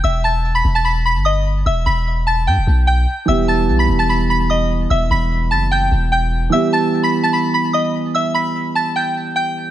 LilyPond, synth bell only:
\new Staff \with { instrumentName = "Synth bell" } { \time 4/4 \key e \minor \tempo 4 = 148 <e'' e'''>8 <a'' a'''>8. <b'' b'''>8 <a'' a'''>16 <b'' b'''>8 <b'' b'''>8 <dis'' dis'''>8 r8 | <e'' e'''>8 <b'' b'''>4 <a'' a'''>8 <g'' g'''>4 <g'' g'''>4 | <e'' e'''>8 <a'' a'''>8. <b'' b'''>8 <a'' a'''>16 <b'' b'''>8 <b'' b'''>8 <dis'' dis'''>8 r8 | <e'' e'''>8 <b'' b'''>4 <a'' a'''>8 <g'' g'''>4 <g'' g'''>4 |
<e'' e'''>8 <a'' a'''>8. <b'' b'''>8 <a'' a'''>16 <b'' b'''>8 <b'' b'''>8 <dis'' dis'''>8 r8 | <e'' e'''>8 <b'' b'''>4 <a'' a'''>8 <g'' g'''>4 <g'' g'''>4 | }